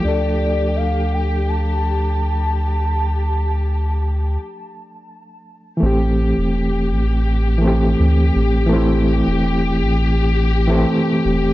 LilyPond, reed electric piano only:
\new Staff \with { instrumentName = "Reed electric piano" } { \time 4/4 \key a \minor \tempo 4 = 83 <f a d' a'>1~ | <f a d' a'>1 | <e a c' g'>2~ <e a c' g'>8 <e a c' g'>4. | <e a c' e'>2~ <e a c' e'>8. <e a c' g'>16 r4 | }